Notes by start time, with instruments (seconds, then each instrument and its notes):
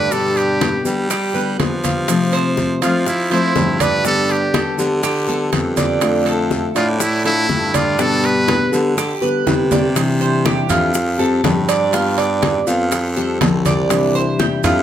Already playing: baritone saxophone G2, steel-string acoustic guitar A3 D4 F4, muted trumpet B4, cuban tres D5
0.11 steel-string acoustic guitar B2 D3 G3 B3 G4, cuban tres D4, muted trumpet A4, high bongo, high conga, long guiro, maracas
0.36 muted trumpet G4, high bongo, high conga, high timbale, maracas
0.61 cuban tres B4, high bongo, high conga, high timbale, short guiro, maracas
0.85 steel-string acoustic guitar D3 G3 B3 G4, baritone saxophone G3, high bongo, high conga, short guiro, maracas
1.10 cuban tres G4, muted steel-string acoustic guitar stroke, high bongo, high conga, high timbale, long guiro, maracas
1.34 steel-string acoustic guitar D3 G3 B3 G4, cuban tres B4, high conga, maracas
1.59 steel-string acoustic guitar D3 G3 B3 G4, baritone saxophone F3, high bongo, low bongo, high conga, high timbale, low timbale, short guiro, maracas
1.84 cuban tres F5, high bongo, high conga, high timbale, short guiro, maracas
2.08 steel-string acoustic guitar C3 F3 A3 C4 F4, high bongo, high timbale, long guiro, maracas
2.32 cuban tres C5, high bongo, high conga, high timbale, maracas
2.57 high bongo, high conga, short guiro, maracas
2.82 baritone saxophone F3, steel-string acoustic guitar F3 A3 C4 F4, muted trumpet F4, cuban tres F5, high bongo, high conga, high timbale, short guiro, maracas
3.06 muted trumpet E4, muted steel-string acoustic guitar stroke, high bongo, high conga, long guiro, maracas
3.30 steel-string acoustic guitar F3 A3 C4 F4, muted trumpet E4, cuban tres C5, high conga, high timbale, maracas
3.55 baritone saxophone G2, steel-string acoustic guitar F3 A3 C4 F4, high bongo, low bongo, high conga, low timbale, short guiro, maracas
3.80 muted trumpet B4, cuban tres D5, high bongo, high conga, high timbale, short guiro, maracas
4.04 steel-string acoustic guitar D3 G3 B3 G4, cuban tres D4, muted trumpet A4, high bongo, high conga, long guiro, maracas
4.29 muted trumpet G4, high bongo, high conga, high timbale, maracas
4.54 cuban tres A4, high bongo, high conga, high timbale, short guiro, maracas
4.78 baritone saxophone D3, steel-string acoustic guitar G3 B3 G4, high bongo, high conga, short guiro, maracas
5.03 cuban tres G4, muted steel-string acoustic guitar stroke, high bongo, high conga, high timbale, long guiro, maracas
5.27 steel-string acoustic guitar G3 B3 G4, cuban tres A4, high conga, maracas
5.52 baritone saxophone F2, steel-string acoustic guitar D3 G3 B3 G4, high bongo, low bongo, high conga, high timbale, short guiro, maracas
5.77 cuban tres D5, high bongo, high conga, high timbale, short guiro, maracas
6.01 steel-string acoustic guitar D3 A3 D4 F4, high bongo, high conga, high timbale, long guiro, maracas
6.26 cuban tres A4, high bongo, high conga, high timbale, maracas
6.51 high bongo, high conga, short guiro, maracas
6.75 baritone saxophone A2, steel-string acoustic guitar A3 D4 F4, muted trumpet F4, cuban tres D5, high bongo, high conga, high timbale, short guiro, maracas
7.00 muted trumpet E4, muted steel-string acoustic guitar stroke, high bongo, high conga, long guiro, maracas
7.25 steel-string acoustic guitar A3 D4 F4, muted trumpet E4, cuban tres A4, high conga, high timbale, maracas
7.49 baritone saxophone G2, steel-string acoustic guitar D3 A3 D4 F4, high bongo, low bongo, high conga, short guiro, maracas
7.74 muted trumpet F4, cuban tres D5, high bongo, high conga, high timbale, short guiro, maracas
7.98 steel-string acoustic guitar B2 D3 G3 B3 G4, cuban tres D4, muted trumpet A4, high bongo, high conga, long guiro, maracas
8.24 muted trumpet B4, high bongo, high conga, high timbale, maracas
8.48 cuban tres B4, high bongo, high conga, high timbale, short guiro, maracas
8.72 baritone saxophone D3, steel-string acoustic guitar D3 G3 B3 G4, high bongo, high conga, short guiro, maracas
8.96 cuban tres G4, muted steel-string acoustic guitar stroke, high bongo, high conga, high timbale, long guiro, maracas
9.21 steel-string acoustic guitar D3 G3 B3 G4, cuban tres B4, high conga, maracas
9.46 baritone saxophone C3, steel-string acoustic guitar D3 G3 B3 G4, high bongo, low bongo, high conga, high timbale, short guiro, maracas
9.71 cuban tres D5, high bongo, high conga, low timbale, short guiro, maracas
9.95 steel-string acoustic guitar C3 E3 G3 D4 E4, high bongo, high conga, high timbale, long guiro, maracas
10.21 cuban tres C5, high conga, maracas
10.45 cuban tres G4, high bongo, high conga, high timbale, low timbale, short guiro, maracas
10.69 baritone saxophone F2, steel-string acoustic guitar E3 G3 D4 E4, cuban tres F4, high conga, low conga, high timbale, short guiro, maracas
10.94 muted steel-string acoustic guitar stroke, high bongo, high conga, long guiro, maracas
11.18 steel-string acoustic guitar G3 C4 G4, cuban tres A4, high conga, maracas
11.44 baritone saxophone G2, steel-string acoustic guitar F3 G3 C4 G4, high bongo, low bongo, high conga, high timbale, low timbale, short guiro, maracas
11.69 cuban tres D5, high timbale, short guiro, maracas
11.93 steel-string acoustic guitar G3 B3 F4, cuban tres F4, high bongo, high conga, high timbale, long guiro, maracas
12.18 cuban tres D5, high bongo, high conga, high timbale, maracas
12.42 high bongo, high conga, high timbale, low timbale, short guiro, maracas
12.67 baritone saxophone F2, steel-string acoustic guitar B3 F4, cuban tres F5, high bongo, high conga, short guiro, maracas
12.91 muted steel-string acoustic guitar stroke, high bongo, high conga, high timbale, long guiro, maracas
13.16 steel-string acoustic guitar G3 C4 G4, cuban tres A4, high conga, maracas
13.41 baritone saxophone C2, steel-string acoustic guitar F3 G3 C4 G4, high bongo, low bongo, high conga, high timbale, low timbale, short guiro, maracas
13.65 cuban tres D5, high bongo, high conga, high timbale, short guiro, maracas
13.90 steel-string acoustic guitar C3 E3 G3 D4 E4, high bongo, high conga, high timbale, long guiro, maracas
14.15 cuban tres C5, high conga, maracas
14.39 cuban tres G4, high bongo, high conga, high timbale, low timbale, short guiro, maracas
14.64 baritone saxophone F2, steel-string acoustic guitar E3 G3 D4 E4, cuban tres F4, high conga, low conga, high timbale, short guiro, maracas